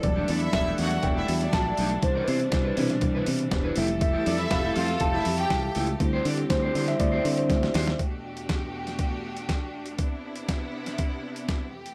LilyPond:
<<
  \new Staff \with { instrumentName = "String section" } { \time 4/4 \key e \minor \tempo 4 = 121 r8 <d' d''>16 <e' e''>8. <fis' fis''>8 r16 <e' e''>16 r16 <d' d''>8. r8 | r1 | r8 <d' d''>16 <e' e''>8. <f' f''>8 r16 <e' e''>16 r16 <g' g''>8. r8 | r1 |
r1 | r1 | }
  \new Staff \with { instrumentName = "Clean electric guitar" } { \time 4/4 \key e \minor r16 <a d' g'>16 <a d' a'>16 r8 <a d' g'>16 <a d' g'>16 r8 <a d' g'>16 r4 <a d' g'>16 r16 | r16 <d' e' b'>16 <d' e' c''>16 r8 <d' e' b'>16 <d' e' b'>16 r8 <d' e' b'>16 r8. <d' e' b'>16 <a e' g'>16 r16 | r16 <a e' g'>16 <a e' a'>16 r8 <a e' g'>16 <a e' g'>16 r8 <a e' g'>16 r4 <a e' g'>16 r16 | r16 <d' g' c''>16 <d' g' d''>16 r8 <d' g' c''>16 <d' g' c''>16 r8 <d' g' c''>16 r4 <d' g' c''>16 r16 |
r1 | r1 | }
  \new Staff \with { instrumentName = "Tine electric piano" } { \time 4/4 \key e \minor d''4 e''4 g''4 a''4 | c''2~ c''8 r4 e''8 | e''4 f''4 a''4. r8 | r4 c''8. e''16 d''8. c''8 r8. |
r1 | r1 | }
  \new Staff \with { instrumentName = "Tine electric piano" } { \time 4/4 \key e \minor <fis g a d'>2~ <fis g a d'>8 <g a d' fis'>8 r4 | r4. <b, e d'>8 r4. <g a e'>8 | r1 | <g c' e'>4. <g c' e'>8 r2 |
r1 | r1 | }
  \new Staff \with { instrumentName = "String section" } { \time 4/4 \key e \minor <e d' e' a'>1 | <b, e g>2.~ <b, e g>8 <f g' a'>8~ | <f g' a'>1 | <d c'>1 |
<e, b, a d' fis' g'>1 | <c b e'>2.~ <c b e'>8 <f, e a g'>8 | }
  \new Staff \with { instrumentName = "Fingered electric bass" } { \clef bass \time 4/4 \key e \minor e,,8 e,8 e,,8 e,8 e,,8 e,8 bes,,8 b,,8 | c,8 c8 c,8 c8 c,8 c8 e,,8 f,,8~ | f,,8 f,8 f,,8 f,8 f,,8 f,8 c,8 cis,8 | d,8 d8 d,8 d8 d,8 d8 d,8 ees,8 |
r1 | r1 | }
  \new DrumStaff \with { instrumentName = "Drums" } \drummode { \time 4/4 <hh bd>8 hho16 hh16 <hh bd sn>8 hho16 <hh sn>16 <hh bd>8 hho16 hh16 <hh bd sn>8 hho16 hh16 | <hh bd>8 hho16 hh16 <hh bd sn>8 hho16 <hh sn>16 <hh bd>8 hho16 hh16 <hh bd sn>8 hho16 hh16 | <hh bd>8 hho16 hh16 <hh bd sn>8 hho16 <hh sn>16 <hh bd>8 hho16 hh16 <hh bd sn>8 hho16 hh16 | <hh bd>8 hho16 hh16 <hh bd sn>8 hho16 <hh sn>16 <hh bd>8 hho16 hh16 <hh bd sn>16 sn16 <hho sn>16 <hh sn>16 |
<hh bd>8. hh16 <hh bd sn>8. <hh sn>16 <hh bd>8. hh16 <hh bd sn>8. hh16 | <hh bd>8. hh16 <hh bd sn>8. <hh sn>16 <hh bd>8. hh16 <hh bd sn>8. hh16 | }
>>